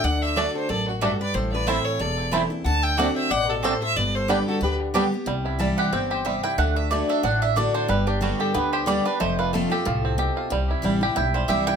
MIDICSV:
0, 0, Header, 1, 8, 480
1, 0, Start_track
1, 0, Key_signature, 1, "major"
1, 0, Tempo, 327332
1, 53, Time_signature, 4, 2, 24, 8
1, 17245, End_track
2, 0, Start_track
2, 0, Title_t, "Fiddle"
2, 0, Program_c, 0, 110
2, 59, Note_on_c, 0, 78, 96
2, 327, Note_on_c, 0, 76, 105
2, 349, Note_off_c, 0, 78, 0
2, 549, Note_on_c, 0, 74, 90
2, 571, Note_off_c, 0, 76, 0
2, 807, Note_off_c, 0, 74, 0
2, 821, Note_on_c, 0, 72, 89
2, 1017, Note_on_c, 0, 74, 109
2, 1039, Note_off_c, 0, 72, 0
2, 1281, Note_off_c, 0, 74, 0
2, 1293, Note_on_c, 0, 66, 51
2, 1494, Note_on_c, 0, 69, 84
2, 1516, Note_off_c, 0, 66, 0
2, 1760, Note_off_c, 0, 69, 0
2, 1770, Note_on_c, 0, 74, 104
2, 1973, Note_on_c, 0, 72, 87
2, 1995, Note_off_c, 0, 74, 0
2, 2225, Note_off_c, 0, 72, 0
2, 2234, Note_on_c, 0, 74, 97
2, 2453, Note_on_c, 0, 76, 106
2, 2475, Note_off_c, 0, 74, 0
2, 2711, Note_on_c, 0, 73, 91
2, 2733, Note_off_c, 0, 76, 0
2, 2937, Note_on_c, 0, 74, 97
2, 2959, Note_off_c, 0, 73, 0
2, 3416, Note_off_c, 0, 74, 0
2, 3884, Note_on_c, 0, 81, 101
2, 4150, Note_on_c, 0, 79, 113
2, 4172, Note_off_c, 0, 81, 0
2, 4372, Note_on_c, 0, 78, 99
2, 4394, Note_off_c, 0, 79, 0
2, 4623, Note_off_c, 0, 78, 0
2, 4632, Note_on_c, 0, 76, 100
2, 4855, Note_on_c, 0, 78, 115
2, 4877, Note_off_c, 0, 76, 0
2, 5127, Note_on_c, 0, 69, 84
2, 5149, Note_off_c, 0, 78, 0
2, 5331, Note_on_c, 0, 72, 85
2, 5353, Note_off_c, 0, 69, 0
2, 5598, Note_off_c, 0, 72, 0
2, 5606, Note_on_c, 0, 76, 114
2, 5811, Note_on_c, 0, 74, 93
2, 5833, Note_off_c, 0, 76, 0
2, 6085, Note_on_c, 0, 72, 96
2, 6107, Note_off_c, 0, 74, 0
2, 6296, Note_on_c, 0, 71, 81
2, 6318, Note_off_c, 0, 72, 0
2, 6551, Note_off_c, 0, 71, 0
2, 6559, Note_on_c, 0, 69, 87
2, 6759, Note_off_c, 0, 69, 0
2, 6780, Note_on_c, 0, 71, 92
2, 6937, Note_off_c, 0, 71, 0
2, 17245, End_track
3, 0, Start_track
3, 0, Title_t, "Mandolin"
3, 0, Program_c, 1, 25
3, 526, Note_on_c, 1, 57, 77
3, 533, Note_on_c, 1, 66, 86
3, 537, Note_on_c, 1, 74, 91
3, 543, Note_on_c, 1, 81, 88
3, 675, Note_off_c, 1, 57, 0
3, 679, Note_off_c, 1, 66, 0
3, 681, Note_off_c, 1, 74, 0
3, 684, Note_off_c, 1, 81, 0
3, 1484, Note_on_c, 1, 57, 96
3, 1493, Note_on_c, 1, 66, 94
3, 1497, Note_on_c, 1, 74, 106
3, 1500, Note_on_c, 1, 81, 104
3, 1635, Note_off_c, 1, 57, 0
3, 1639, Note_off_c, 1, 66, 0
3, 1641, Note_off_c, 1, 74, 0
3, 1643, Note_off_c, 1, 81, 0
3, 2447, Note_on_c, 1, 57, 85
3, 2453, Note_on_c, 1, 64, 86
3, 2459, Note_on_c, 1, 72, 84
3, 2465, Note_on_c, 1, 81, 101
3, 2597, Note_off_c, 1, 57, 0
3, 2599, Note_off_c, 1, 64, 0
3, 2602, Note_off_c, 1, 72, 0
3, 2605, Note_off_c, 1, 81, 0
3, 3399, Note_on_c, 1, 57, 97
3, 3408, Note_on_c, 1, 64, 98
3, 3412, Note_on_c, 1, 72, 100
3, 3415, Note_on_c, 1, 81, 107
3, 3553, Note_off_c, 1, 57, 0
3, 3557, Note_off_c, 1, 64, 0
3, 3559, Note_off_c, 1, 72, 0
3, 3560, Note_off_c, 1, 81, 0
3, 4361, Note_on_c, 1, 60, 83
3, 4368, Note_on_c, 1, 66, 92
3, 4372, Note_on_c, 1, 74, 94
3, 4377, Note_on_c, 1, 81, 102
3, 4513, Note_off_c, 1, 60, 0
3, 4517, Note_off_c, 1, 66, 0
3, 4519, Note_off_c, 1, 74, 0
3, 4521, Note_off_c, 1, 81, 0
3, 5317, Note_on_c, 1, 60, 98
3, 5324, Note_on_c, 1, 66, 100
3, 5328, Note_on_c, 1, 74, 107
3, 5332, Note_on_c, 1, 81, 103
3, 5471, Note_off_c, 1, 60, 0
3, 5475, Note_off_c, 1, 66, 0
3, 5477, Note_off_c, 1, 74, 0
3, 5479, Note_off_c, 1, 81, 0
3, 6281, Note_on_c, 1, 59, 91
3, 6288, Note_on_c, 1, 67, 89
3, 6294, Note_on_c, 1, 74, 92
3, 6297, Note_on_c, 1, 79, 97
3, 6433, Note_off_c, 1, 59, 0
3, 6437, Note_off_c, 1, 67, 0
3, 6440, Note_off_c, 1, 74, 0
3, 6441, Note_off_c, 1, 79, 0
3, 7241, Note_on_c, 1, 59, 98
3, 7247, Note_on_c, 1, 67, 109
3, 7253, Note_on_c, 1, 74, 90
3, 7257, Note_on_c, 1, 79, 107
3, 7393, Note_off_c, 1, 59, 0
3, 7396, Note_off_c, 1, 67, 0
3, 7399, Note_off_c, 1, 74, 0
3, 7401, Note_off_c, 1, 79, 0
3, 8204, Note_on_c, 1, 81, 80
3, 8466, Note_off_c, 1, 81, 0
3, 8472, Note_on_c, 1, 78, 90
3, 8682, Note_off_c, 1, 78, 0
3, 8688, Note_on_c, 1, 79, 89
3, 8948, Note_off_c, 1, 79, 0
3, 8955, Note_on_c, 1, 72, 68
3, 9165, Note_off_c, 1, 72, 0
3, 9170, Note_on_c, 1, 76, 87
3, 9429, Note_off_c, 1, 76, 0
3, 9436, Note_on_c, 1, 79, 112
3, 9645, Note_off_c, 1, 79, 0
3, 9651, Note_on_c, 1, 78, 89
3, 9909, Note_off_c, 1, 78, 0
3, 9918, Note_on_c, 1, 76, 86
3, 10126, Note_off_c, 1, 76, 0
3, 10128, Note_on_c, 1, 74, 83
3, 10388, Note_off_c, 1, 74, 0
3, 10403, Note_on_c, 1, 76, 86
3, 10606, Note_off_c, 1, 76, 0
3, 10612, Note_on_c, 1, 78, 96
3, 10870, Note_off_c, 1, 78, 0
3, 10879, Note_on_c, 1, 76, 87
3, 11087, Note_off_c, 1, 76, 0
3, 11092, Note_on_c, 1, 74, 95
3, 11350, Note_off_c, 1, 74, 0
3, 11356, Note_on_c, 1, 72, 91
3, 11565, Note_off_c, 1, 72, 0
3, 11574, Note_on_c, 1, 71, 86
3, 11831, Note_off_c, 1, 71, 0
3, 11833, Note_on_c, 1, 67, 80
3, 12043, Note_off_c, 1, 67, 0
3, 12055, Note_on_c, 1, 66, 72
3, 12311, Note_off_c, 1, 66, 0
3, 12315, Note_on_c, 1, 69, 80
3, 12521, Note_off_c, 1, 69, 0
3, 12527, Note_on_c, 1, 71, 82
3, 12787, Note_off_c, 1, 71, 0
3, 12798, Note_on_c, 1, 72, 89
3, 13005, Note_off_c, 1, 72, 0
3, 13011, Note_on_c, 1, 74, 113
3, 13269, Note_off_c, 1, 74, 0
3, 13279, Note_on_c, 1, 71, 91
3, 13486, Note_off_c, 1, 71, 0
3, 13496, Note_on_c, 1, 72, 96
3, 13752, Note_off_c, 1, 72, 0
3, 13765, Note_on_c, 1, 71, 80
3, 13970, Note_off_c, 1, 71, 0
3, 13978, Note_on_c, 1, 69, 71
3, 14229, Note_off_c, 1, 69, 0
3, 14247, Note_on_c, 1, 69, 78
3, 15358, Note_off_c, 1, 69, 0
3, 16362, Note_on_c, 1, 79, 83
3, 16624, Note_off_c, 1, 79, 0
3, 16631, Note_on_c, 1, 72, 77
3, 16841, Note_on_c, 1, 76, 93
3, 16842, Note_off_c, 1, 72, 0
3, 17104, Note_off_c, 1, 76, 0
3, 17113, Note_on_c, 1, 79, 125
3, 17245, Note_off_c, 1, 79, 0
3, 17245, End_track
4, 0, Start_track
4, 0, Title_t, "Resonator guitar played with a steel bar"
4, 0, Program_c, 2, 25
4, 54, Note_on_c, 2, 74, 74
4, 337, Note_off_c, 2, 74, 0
4, 337, Note_on_c, 2, 72, 78
4, 560, Note_off_c, 2, 72, 0
4, 560, Note_on_c, 2, 69, 65
4, 794, Note_off_c, 2, 69, 0
4, 811, Note_on_c, 2, 69, 65
4, 1005, Note_off_c, 2, 69, 0
4, 1023, Note_on_c, 2, 69, 76
4, 1284, Note_off_c, 2, 69, 0
4, 1508, Note_on_c, 2, 66, 65
4, 1766, Note_off_c, 2, 66, 0
4, 1771, Note_on_c, 2, 71, 90
4, 2006, Note_off_c, 2, 71, 0
4, 2006, Note_on_c, 2, 69, 64
4, 2256, Note_off_c, 2, 69, 0
4, 2266, Note_on_c, 2, 71, 87
4, 2482, Note_off_c, 2, 71, 0
4, 2482, Note_on_c, 2, 72, 79
4, 2736, Note_off_c, 2, 72, 0
4, 2736, Note_on_c, 2, 69, 79
4, 2932, Note_off_c, 2, 69, 0
4, 2950, Note_on_c, 2, 69, 67
4, 3422, Note_off_c, 2, 69, 0
4, 3877, Note_on_c, 2, 78, 86
4, 4140, Note_off_c, 2, 78, 0
4, 4140, Note_on_c, 2, 76, 88
4, 4351, Note_off_c, 2, 76, 0
4, 4351, Note_on_c, 2, 74, 72
4, 4628, Note_off_c, 2, 74, 0
4, 4638, Note_on_c, 2, 72, 78
4, 4845, Note_off_c, 2, 72, 0
4, 4845, Note_on_c, 2, 74, 84
4, 5124, Note_off_c, 2, 74, 0
4, 5124, Note_on_c, 2, 66, 62
4, 5345, Note_off_c, 2, 66, 0
4, 5345, Note_on_c, 2, 69, 75
4, 5602, Note_on_c, 2, 72, 84
4, 5605, Note_off_c, 2, 69, 0
4, 5832, Note_off_c, 2, 72, 0
4, 5832, Note_on_c, 2, 71, 72
4, 6099, Note_off_c, 2, 71, 0
4, 6099, Note_on_c, 2, 69, 72
4, 6303, Note_off_c, 2, 69, 0
4, 6303, Note_on_c, 2, 67, 62
4, 6564, Note_off_c, 2, 67, 0
4, 6571, Note_on_c, 2, 66, 78
4, 6765, Note_off_c, 2, 66, 0
4, 6802, Note_on_c, 2, 67, 73
4, 7035, Note_off_c, 2, 67, 0
4, 17245, End_track
5, 0, Start_track
5, 0, Title_t, "Five-string banjo"
5, 0, Program_c, 3, 105
5, 547, Note_on_c, 3, 57, 62
5, 553, Note_on_c, 3, 62, 66
5, 560, Note_off_c, 3, 62, 0
5, 560, Note_on_c, 3, 62, 62
5, 658, Note_off_c, 3, 57, 0
5, 661, Note_off_c, 3, 62, 0
5, 1503, Note_on_c, 3, 57, 66
5, 1511, Note_on_c, 3, 62, 66
5, 1513, Note_off_c, 3, 62, 0
5, 1513, Note_on_c, 3, 62, 64
5, 1616, Note_off_c, 3, 57, 0
5, 1620, Note_off_c, 3, 62, 0
5, 2459, Note_on_c, 3, 57, 65
5, 2466, Note_on_c, 3, 60, 69
5, 2476, Note_on_c, 3, 64, 65
5, 2574, Note_off_c, 3, 57, 0
5, 2578, Note_off_c, 3, 60, 0
5, 2580, Note_off_c, 3, 64, 0
5, 3426, Note_on_c, 3, 57, 67
5, 3431, Note_on_c, 3, 60, 66
5, 3441, Note_on_c, 3, 64, 60
5, 3537, Note_off_c, 3, 57, 0
5, 3541, Note_off_c, 3, 60, 0
5, 3543, Note_off_c, 3, 64, 0
5, 4382, Note_on_c, 3, 57, 61
5, 4394, Note_on_c, 3, 60, 68
5, 4398, Note_on_c, 3, 62, 65
5, 4496, Note_off_c, 3, 57, 0
5, 4499, Note_off_c, 3, 60, 0
5, 4503, Note_off_c, 3, 62, 0
5, 5348, Note_on_c, 3, 57, 66
5, 5355, Note_on_c, 3, 60, 65
5, 5358, Note_on_c, 3, 62, 66
5, 5458, Note_off_c, 3, 57, 0
5, 5460, Note_off_c, 3, 60, 0
5, 5463, Note_off_c, 3, 62, 0
5, 6297, Note_on_c, 3, 55, 65
5, 6304, Note_on_c, 3, 59, 66
5, 6306, Note_on_c, 3, 62, 67
5, 6413, Note_off_c, 3, 55, 0
5, 6414, Note_off_c, 3, 59, 0
5, 6417, Note_off_c, 3, 62, 0
5, 7261, Note_on_c, 3, 55, 67
5, 7266, Note_on_c, 3, 59, 62
5, 7269, Note_on_c, 3, 62, 66
5, 7374, Note_off_c, 3, 55, 0
5, 7375, Note_off_c, 3, 59, 0
5, 7378, Note_off_c, 3, 62, 0
5, 7734, Note_on_c, 3, 55, 67
5, 7999, Note_on_c, 3, 64, 57
5, 8202, Note_off_c, 3, 55, 0
5, 8219, Note_on_c, 3, 55, 57
5, 8487, Note_on_c, 3, 67, 60
5, 8650, Note_off_c, 3, 64, 0
5, 8697, Note_on_c, 3, 60, 69
5, 8908, Note_off_c, 3, 55, 0
5, 8942, Note_off_c, 3, 67, 0
5, 8960, Note_on_c, 3, 67, 57
5, 9179, Note_on_c, 3, 55, 70
5, 9387, Note_off_c, 3, 60, 0
5, 9450, Note_on_c, 3, 64, 55
5, 9610, Note_off_c, 3, 67, 0
5, 9651, Note_off_c, 3, 55, 0
5, 9657, Note_on_c, 3, 57, 75
5, 9658, Note_off_c, 3, 64, 0
5, 10132, Note_off_c, 3, 57, 0
5, 10149, Note_on_c, 3, 57, 57
5, 10411, Note_on_c, 3, 62, 61
5, 10612, Note_off_c, 3, 62, 0
5, 10630, Note_on_c, 3, 62, 65
5, 10833, Note_off_c, 3, 57, 0
5, 10873, Note_off_c, 3, 62, 0
5, 10890, Note_on_c, 3, 62, 64
5, 11086, Note_off_c, 3, 62, 0
5, 11103, Note_on_c, 3, 62, 59
5, 11339, Note_off_c, 3, 62, 0
5, 11356, Note_on_c, 3, 62, 62
5, 11572, Note_off_c, 3, 62, 0
5, 11572, Note_on_c, 3, 55, 75
5, 11841, Note_on_c, 3, 62, 56
5, 12043, Note_off_c, 3, 55, 0
5, 12061, Note_on_c, 3, 55, 59
5, 12323, Note_on_c, 3, 67, 60
5, 12491, Note_off_c, 3, 62, 0
5, 12533, Note_on_c, 3, 59, 60
5, 12749, Note_off_c, 3, 55, 0
5, 12786, Note_off_c, 3, 67, 0
5, 12804, Note_on_c, 3, 67, 62
5, 13011, Note_on_c, 3, 55, 75
5, 13225, Note_off_c, 3, 59, 0
5, 13282, Note_on_c, 3, 62, 60
5, 13452, Note_off_c, 3, 67, 0
5, 13491, Note_off_c, 3, 55, 0
5, 13494, Note_off_c, 3, 62, 0
5, 13497, Note_on_c, 3, 57, 73
5, 13766, Note_on_c, 3, 65, 59
5, 13968, Note_off_c, 3, 57, 0
5, 13986, Note_on_c, 3, 57, 56
5, 14248, Note_on_c, 3, 67, 58
5, 14413, Note_off_c, 3, 65, 0
5, 14464, Note_on_c, 3, 65, 59
5, 14671, Note_off_c, 3, 57, 0
5, 14734, Note_on_c, 3, 60, 55
5, 14894, Note_off_c, 3, 67, 0
5, 14941, Note_on_c, 3, 67, 54
5, 15150, Note_off_c, 3, 65, 0
5, 15205, Note_on_c, 3, 65, 58
5, 15377, Note_off_c, 3, 60, 0
5, 15416, Note_off_c, 3, 65, 0
5, 15416, Note_off_c, 3, 67, 0
5, 15426, Note_on_c, 3, 55, 70
5, 15700, Note_on_c, 3, 64, 53
5, 15891, Note_off_c, 3, 55, 0
5, 15908, Note_on_c, 3, 55, 57
5, 16170, Note_on_c, 3, 67, 60
5, 16340, Note_off_c, 3, 64, 0
5, 16374, Note_on_c, 3, 64, 67
5, 16592, Note_off_c, 3, 55, 0
5, 16649, Note_on_c, 3, 55, 58
5, 16815, Note_off_c, 3, 67, 0
5, 16858, Note_on_c, 3, 67, 54
5, 17066, Note_off_c, 3, 64, 0
5, 17123, Note_on_c, 3, 64, 59
5, 17245, Note_off_c, 3, 55, 0
5, 17245, Note_off_c, 3, 64, 0
5, 17245, Note_off_c, 3, 67, 0
5, 17245, End_track
6, 0, Start_track
6, 0, Title_t, "Steel-string acoustic guitar"
6, 0, Program_c, 4, 25
6, 57, Note_on_c, 4, 50, 93
6, 510, Note_off_c, 4, 50, 0
6, 527, Note_on_c, 4, 50, 83
6, 541, Note_on_c, 4, 57, 93
6, 548, Note_on_c, 4, 62, 102
6, 559, Note_on_c, 4, 66, 92
6, 989, Note_off_c, 4, 50, 0
6, 996, Note_off_c, 4, 57, 0
6, 1000, Note_off_c, 4, 62, 0
6, 1005, Note_off_c, 4, 66, 0
6, 1011, Note_on_c, 4, 42, 81
6, 1471, Note_off_c, 4, 42, 0
6, 1487, Note_on_c, 4, 43, 87
6, 1949, Note_off_c, 4, 43, 0
6, 1965, Note_on_c, 4, 45, 93
6, 2443, Note_on_c, 4, 52, 81
6, 2454, Note_on_c, 4, 57, 90
6, 2462, Note_on_c, 4, 60, 83
6, 2476, Note_on_c, 4, 64, 95
6, 2887, Note_off_c, 4, 45, 0
6, 2907, Note_off_c, 4, 52, 0
6, 2913, Note_off_c, 4, 57, 0
6, 2917, Note_off_c, 4, 60, 0
6, 2924, Note_off_c, 4, 64, 0
6, 2925, Note_on_c, 4, 40, 93
6, 3394, Note_on_c, 4, 52, 87
6, 3409, Note_on_c, 4, 57, 93
6, 3415, Note_on_c, 4, 60, 85
6, 3422, Note_on_c, 4, 64, 95
6, 3648, Note_off_c, 4, 64, 0
6, 3659, Note_off_c, 4, 52, 0
6, 3666, Note_off_c, 4, 57, 0
6, 3666, Note_on_c, 4, 64, 60
6, 3670, Note_off_c, 4, 60, 0
6, 3692, Note_on_c, 4, 60, 50
6, 3847, Note_off_c, 4, 40, 0
6, 3879, Note_off_c, 4, 64, 0
6, 3892, Note_off_c, 4, 60, 0
6, 3900, Note_on_c, 4, 50, 93
6, 4342, Note_off_c, 4, 50, 0
6, 4359, Note_on_c, 4, 50, 93
6, 4373, Note_on_c, 4, 57, 93
6, 4390, Note_on_c, 4, 60, 105
6, 4391, Note_on_c, 4, 66, 98
6, 4825, Note_off_c, 4, 50, 0
6, 4832, Note_off_c, 4, 57, 0
6, 4840, Note_off_c, 4, 60, 0
6, 4841, Note_off_c, 4, 66, 0
6, 4856, Note_on_c, 4, 47, 88
6, 5314, Note_off_c, 4, 47, 0
6, 5342, Note_on_c, 4, 45, 89
6, 5796, Note_off_c, 4, 45, 0
6, 5813, Note_on_c, 4, 43, 93
6, 6279, Note_on_c, 4, 50, 85
6, 6295, Note_on_c, 4, 55, 83
6, 6298, Note_on_c, 4, 59, 92
6, 6308, Note_on_c, 4, 67, 98
6, 6730, Note_off_c, 4, 43, 0
6, 6739, Note_off_c, 4, 50, 0
6, 6752, Note_off_c, 4, 55, 0
6, 6754, Note_off_c, 4, 59, 0
6, 6757, Note_on_c, 4, 50, 93
6, 6759, Note_off_c, 4, 67, 0
6, 7223, Note_off_c, 4, 50, 0
6, 7240, Note_on_c, 4, 50, 91
6, 7252, Note_on_c, 4, 55, 94
6, 7259, Note_on_c, 4, 59, 106
6, 7268, Note_on_c, 4, 67, 103
6, 7492, Note_off_c, 4, 67, 0
6, 7502, Note_off_c, 4, 50, 0
6, 7507, Note_off_c, 4, 55, 0
6, 7509, Note_on_c, 4, 67, 53
6, 7511, Note_off_c, 4, 59, 0
6, 7535, Note_on_c, 4, 59, 51
6, 7714, Note_on_c, 4, 48, 88
6, 7720, Note_off_c, 4, 67, 0
6, 7733, Note_off_c, 4, 59, 0
6, 8192, Note_on_c, 4, 52, 83
6, 8204, Note_on_c, 4, 55, 90
6, 8213, Note_on_c, 4, 60, 89
6, 8218, Note_on_c, 4, 64, 99
6, 8640, Note_off_c, 4, 48, 0
6, 8661, Note_off_c, 4, 52, 0
6, 8667, Note_off_c, 4, 55, 0
6, 8672, Note_off_c, 4, 60, 0
6, 8674, Note_off_c, 4, 64, 0
6, 8691, Note_on_c, 4, 59, 87
6, 9150, Note_off_c, 4, 59, 0
6, 9160, Note_on_c, 4, 48, 90
6, 9625, Note_off_c, 4, 48, 0
6, 9649, Note_on_c, 4, 50, 90
6, 10112, Note_off_c, 4, 50, 0
6, 10130, Note_on_c, 4, 50, 86
6, 10141, Note_on_c, 4, 57, 96
6, 10152, Note_on_c, 4, 62, 89
6, 10158, Note_on_c, 4, 66, 99
6, 10590, Note_off_c, 4, 50, 0
6, 10595, Note_off_c, 4, 57, 0
6, 10601, Note_off_c, 4, 62, 0
6, 10604, Note_off_c, 4, 66, 0
6, 10606, Note_on_c, 4, 45, 92
6, 11085, Note_on_c, 4, 50, 90
6, 11099, Note_on_c, 4, 57, 91
6, 11103, Note_on_c, 4, 62, 99
6, 11115, Note_on_c, 4, 66, 98
6, 11526, Note_off_c, 4, 45, 0
6, 11547, Note_off_c, 4, 50, 0
6, 11554, Note_off_c, 4, 57, 0
6, 11556, Note_off_c, 4, 62, 0
6, 11562, Note_off_c, 4, 66, 0
6, 11562, Note_on_c, 4, 43, 93
6, 12036, Note_on_c, 4, 50, 83
6, 12047, Note_on_c, 4, 55, 81
6, 12055, Note_on_c, 4, 59, 97
6, 12058, Note_on_c, 4, 67, 99
6, 12484, Note_off_c, 4, 43, 0
6, 12503, Note_off_c, 4, 50, 0
6, 12508, Note_off_c, 4, 55, 0
6, 12512, Note_off_c, 4, 59, 0
6, 12514, Note_off_c, 4, 67, 0
6, 12530, Note_on_c, 4, 50, 95
6, 12976, Note_off_c, 4, 50, 0
6, 12993, Note_on_c, 4, 50, 98
6, 13007, Note_on_c, 4, 55, 96
6, 13019, Note_on_c, 4, 59, 102
6, 13024, Note_on_c, 4, 67, 102
6, 13256, Note_off_c, 4, 67, 0
6, 13258, Note_off_c, 4, 50, 0
6, 13264, Note_off_c, 4, 55, 0
6, 13270, Note_off_c, 4, 59, 0
6, 13274, Note_on_c, 4, 67, 62
6, 13307, Note_on_c, 4, 59, 55
6, 13482, Note_off_c, 4, 67, 0
6, 13490, Note_on_c, 4, 41, 93
6, 13499, Note_off_c, 4, 59, 0
6, 13975, Note_on_c, 4, 53, 86
6, 13988, Note_on_c, 4, 57, 97
6, 13993, Note_on_c, 4, 60, 97
6, 14005, Note_on_c, 4, 65, 104
6, 14203, Note_off_c, 4, 65, 0
6, 14221, Note_on_c, 4, 65, 63
6, 14227, Note_off_c, 4, 60, 0
6, 14228, Note_off_c, 4, 53, 0
6, 14235, Note_off_c, 4, 57, 0
6, 14245, Note_on_c, 4, 60, 51
6, 14408, Note_off_c, 4, 41, 0
6, 14435, Note_off_c, 4, 65, 0
6, 14447, Note_off_c, 4, 60, 0
6, 14450, Note_on_c, 4, 45, 95
6, 14910, Note_off_c, 4, 45, 0
6, 14926, Note_on_c, 4, 47, 92
6, 15388, Note_off_c, 4, 47, 0
6, 15402, Note_on_c, 4, 48, 91
6, 15866, Note_on_c, 4, 52, 82
6, 15882, Note_on_c, 4, 55, 89
6, 15887, Note_on_c, 4, 60, 93
6, 15896, Note_on_c, 4, 64, 96
6, 16126, Note_off_c, 4, 64, 0
6, 16134, Note_off_c, 4, 52, 0
6, 16142, Note_off_c, 4, 55, 0
6, 16143, Note_on_c, 4, 64, 61
6, 16144, Note_off_c, 4, 60, 0
6, 16171, Note_on_c, 4, 60, 52
6, 16324, Note_off_c, 4, 48, 0
6, 16356, Note_off_c, 4, 64, 0
6, 16363, Note_on_c, 4, 43, 92
6, 16370, Note_off_c, 4, 60, 0
6, 16834, Note_on_c, 4, 52, 91
6, 16844, Note_on_c, 4, 55, 98
6, 16860, Note_on_c, 4, 60, 96
6, 16866, Note_on_c, 4, 64, 95
6, 17245, Note_off_c, 4, 43, 0
6, 17245, Note_off_c, 4, 52, 0
6, 17245, Note_off_c, 4, 55, 0
6, 17245, Note_off_c, 4, 60, 0
6, 17245, Note_off_c, 4, 64, 0
6, 17245, End_track
7, 0, Start_track
7, 0, Title_t, "Upright bass"
7, 0, Program_c, 5, 32
7, 57, Note_on_c, 5, 38, 92
7, 681, Note_off_c, 5, 38, 0
7, 1023, Note_on_c, 5, 33, 88
7, 1644, Note_off_c, 5, 33, 0
7, 1979, Note_on_c, 5, 33, 95
7, 2602, Note_off_c, 5, 33, 0
7, 2935, Note_on_c, 5, 28, 87
7, 3560, Note_off_c, 5, 28, 0
7, 3889, Note_on_c, 5, 38, 92
7, 4515, Note_off_c, 5, 38, 0
7, 4852, Note_on_c, 5, 33, 86
7, 5477, Note_off_c, 5, 33, 0
7, 5810, Note_on_c, 5, 31, 95
7, 6435, Note_off_c, 5, 31, 0
7, 6769, Note_on_c, 5, 38, 92
7, 7394, Note_off_c, 5, 38, 0
7, 7730, Note_on_c, 5, 36, 87
7, 8355, Note_off_c, 5, 36, 0
7, 8686, Note_on_c, 5, 31, 88
7, 9313, Note_off_c, 5, 31, 0
7, 9653, Note_on_c, 5, 38, 101
7, 10277, Note_off_c, 5, 38, 0
7, 10611, Note_on_c, 5, 33, 86
7, 11236, Note_off_c, 5, 33, 0
7, 11571, Note_on_c, 5, 31, 98
7, 12196, Note_off_c, 5, 31, 0
7, 12542, Note_on_c, 5, 38, 86
7, 13163, Note_off_c, 5, 38, 0
7, 13509, Note_on_c, 5, 29, 95
7, 14128, Note_off_c, 5, 29, 0
7, 14467, Note_on_c, 5, 36, 93
7, 15086, Note_off_c, 5, 36, 0
7, 15420, Note_on_c, 5, 36, 93
7, 15729, Note_off_c, 5, 36, 0
7, 15897, Note_on_c, 5, 33, 84
7, 16303, Note_off_c, 5, 33, 0
7, 16384, Note_on_c, 5, 35, 86
7, 16787, Note_off_c, 5, 35, 0
7, 16850, Note_on_c, 5, 36, 86
7, 17245, Note_off_c, 5, 36, 0
7, 17245, End_track
8, 0, Start_track
8, 0, Title_t, "Muted resonator guitar played with a steel bar strokes"
8, 1312, Note_on_c, 9, 29, 42
8, 1459, Note_off_c, 9, 29, 0
8, 17245, End_track
0, 0, End_of_file